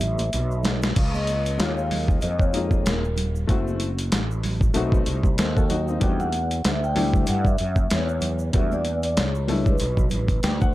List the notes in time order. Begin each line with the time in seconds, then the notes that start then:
Already playing: E5
0.00 A1, closed hi-hat, low conga, shaker
0.18 closed hi-hat, high conga, shaker
0.33 B1, closed hi-hat, shaker
0.51 shaker
0.63 snare, closed hi-hat, low conga, shaker
0.82 snare, shaker
0.96 C#2 F5, kick, closed hi-hat, crash, shaker
1.14 D#5, high conga, shaker
1.27 closed hi-hat, high conga, shaker
1.45 closed hi-hat, shaker
1.58 G#3 A#3 D#4 F4 C#5, snare, closed hi-hat, shaker
1.77 F5, shaker
1.91 open hi-hat, low conga, shaker
2.08 kick, shaker
2.21 F2 D#5, closed hi-hat, shaker
2.39 C#5, kick, shaker
2.53 G#3 A#3 D#4 F4, closed hi-hat, shaker
2.71 kick, high conga, shaker
2.85 D#1 A#4, snare, closed hi-hat, shaker
3.04 shaker
3.17 closed hi-hat, low conga, shaker
3.36 shaker
3.47 F#1 A3 C4 E4 F#4, kick, closed hi-hat, shaker
3.68 high conga, shaker
3.80 closed hi-hat, high conga, shaker
3.99 closed hi-hat, shaker
4.12 A1, snare, closed hi-hat, shaker
4.31 shaker
4.43 open hi-hat, low conga, shaker
4.61 kick, shaker
4.74 B1 A3 C4 D#4 F#4, closed hi-hat, shaker
4.92 kick, shaker
5.06 C2, closed hi-hat, shaker
5.23 kick, high conga, shaker
5.38 D#2 A4 C5, snare, closed hi-hat, shaker
5.57 F#4 A4, kick, shaker
5.70 D#4 F#4, closed hi-hat, low conga, shaker
5.88 C4 D#4, shaker
6.00 E2 G3 A3 D4 F#4 G5, kick, closed hi-hat, shaker
6.20 F#5, high conga, shaker
6.32 closed hi-hat, high conga, shaker
6.51 closed hi-hat, shaker
6.64 D2 E5, snare, closed hi-hat, shaker
6.84 G5, shaker
6.95 F#3 A3 D4 E4, open hi-hat, low conga, shaker
7.01 G3
7.14 kick, shaker
7.27 G2 F#5, closed hi-hat, shaker
7.45 E5, kick, shaker
7.58 F#2, closed hi-hat, shaker
7.76 kick, high conga, shaker
7.90 E2 C#5, snare, closed hi-hat, shaker
8.09 shaker
8.21 closed hi-hat, low conga, shaker
8.39 shaker
8.53 E2 G3 A3 D4 F#4 E5, kick, closed hi-hat, shaker
8.72 D5, high conga, shaker
8.85 closed hi-hat, high conga, shaker
9.03 closed hi-hat, shaker
9.17 C#2 C#5, snare, closed hi-hat, shaker
9.35 shaker
9.48 G3 A3 D4 E4, open hi-hat, low conga, shaker
9.66 B4, kick, shaker
9.78 B1, closed hi-hat, shaker
9.97 kick, shaker
10.10 A1, closed hi-hat, low conga, shaker
10.28 kick, closed hi-hat, high conga, shaker
10.43 D2 G5, snare, closed hi-hat, shaker
10.61 F#5, kick, shaker